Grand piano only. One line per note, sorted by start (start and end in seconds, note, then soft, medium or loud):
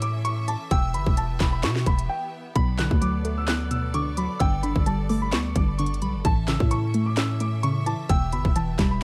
0.02 0.23 D6 medium
0.25 0.46 C#6 medium
0.48 0.69 A5 medium
0.71 0.93 G5 medium
0.94 1.15 B5 medium
1.17 1.50 A5 medium
1.52 1.62 B5 medium
1.64 1.85 C#6 medium
1.87 2.08 B5 medium
2.09 2.31 G5 medium
2.56 2.77 B5 loud
2.78 3.00 F#6 medium
3.01 3.35 D6 medium
3.38 3.47 E6 medium
3.48 3.69 F#6 medium
3.71 3.92 E6 medium
3.94 4.15 D6 medium
4.18 4.39 B5 medium
4.41 4.62 G5 loud
4.63 4.84 B5 medium
4.86 5.20 A5 medium
5.22 5.32 B5 medium
5.33 5.54 C#6 medium
5.56 6.21 D6 medium
6.25 6.46 A5 medium
6.47 6.69 E6 medium
6.71 7.04 C#6 medium
7.06 7.16 D6 medium
7.17 7.39 E6 medium
7.41 7.62 D6 medium
7.63 7.85 C#6 medium
7.86 8.08 A5 medium
8.10 8.31 G5 medium
8.33 8.54 B5 medium
8.56 8.89 A5 medium
8.91 9.01 B5 medium